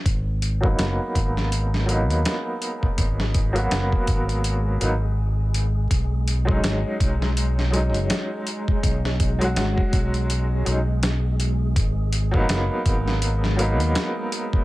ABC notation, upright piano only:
X:1
M:4/4
L:1/16
Q:"Swing 16ths" 1/4=82
K:G#m
V:1 name="Upright piano"
z3 [F,A,B,D]6- [F,A,B,D] [F,A,B,D]6- | [F,A,B,D]3 [F,A,B,F]6- [F,A,B,F] [F,A,B,D] z4 z | z3 [F,G,CD]6- [F,G,CD] [F,G,CD]6- | [F,G,CD]3 [F,G,CF]6- [F,G,CF] [F,G,CD] z4 z |
z3 [F,A,B,D]6- [F,A,B,D] [F,A,B,D]6 |]